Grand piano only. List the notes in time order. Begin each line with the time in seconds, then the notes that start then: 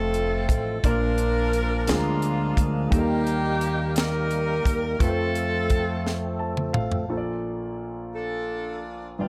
Already playing: A3 C4 F4 D#5
0.84 A#2 A#3 D4 F4 D5
1.87 D3 G#3 D4 F4 G#4
1.95 A#4
2.90 D#3 G3 A#3 D#4 A4
2.99 A#4
4.99 A3 C4 F4 B4
5.08 C5
6.39 A5
6.73 F5
7.09 A#1 A#2 A#3 F4 A4 C5
7.17 D5
9.18 G1 G2 B3 F4 G4 D5